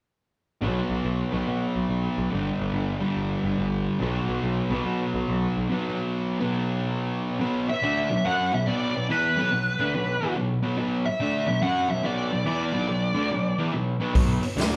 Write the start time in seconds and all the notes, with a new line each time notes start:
0.61 B1 B2 F#3 B3
0.90 B1
1.05 B1
1.31 B1 B2 F#3 B3
1.47 B2
1.76 B1
1.89 B1
2.18 B1
2.31 G1 G2 D3 G3
2.60 G1
2.74 G1
3.00 G2 D3 G3
3.17 G1
3.44 G1
3.59 G1
4.00 B1 B2 F#3 B3
4.29 B1
4.43 B1
4.70 B1 B2 F#3 B3
4.86 B2
5.14 B1
5.29 B1
5.57 B1
5.69 B2 F#3 B3
6.40 B2 F#3 B3
7.40 B2 F#3 B3
7.68 E5, muted distorted electric guitar stroke
7.82 D3 A3 D4
8.10 B2 F#3
8.25 F#3 C#4 F#4 F#5
8.52 B2 F#3 E5
8.67 B2 F#3 B3 D5
8.96 B2 F#3
9.09 E3 B3 E4 B4
9.37 B2 F#3 B3
9.51 B2 F#3
9.79 D3 A3 D4
9.94 B2 F#3
10.22 E3 B3 E4
10.36 B2 F#3
10.63 B2 F#3 B3
10.77 B2 F#3 B3
11.05 E5, muted distorted electric guitar stroke
11.20 D3 A3 D4
11.47 B2 F#3
11.62 F#3 C#4 F#4 F#5
11.89 B2 F#3 E5
12.03 B2 F#3 B3 D5
12.31 B2 F#3
12.45 E3 B3 E4 D5
12.73 B2 F#3 B3
12.88 B2 F#3
13.14 D3 A3 D4
13.30 B2 F#3
13.58 E3 B3 E4
13.73 B2 F#3
14.00 B2 F#3 B3
14.15 B1 B2 F#3 B3, kick, open hi-hat
14.42 muted picked electric bass stroke, muted distorted electric guitar stroke, open hi-hat
14.57 D2 D3 A3 D4, snare, open hi-hat